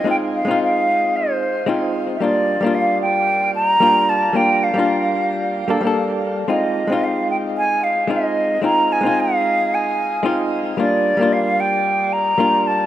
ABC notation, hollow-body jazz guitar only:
X:1
M:4/4
L:1/16
Q:"Swing 16ths" 1/4=112
K:Ablyd
V:1 name="Hollow-body jazz guitar"
[A,CEF]3 [A,CEF]8- [A,CEF] [A,CEF]4 | [G,B,DF]3 [G,B,DF]8- [G,B,DF] [G,B,DF]4 | [G,B,DF]3 [G,B,DF]6- [G,B,DF] [G,B,D=A] [G,B,DA]4- [G,B,DA] | [A,CEF]3 [A,CEF]8- [A,CEF] [A,CEF]4 |
[A,CEF]3 [A,CEF]8- [A,CEF] [A,CEF]4 | [G,B,DF]3 [G,B,DF]8- [G,B,DF] [G,B,DF]4 |]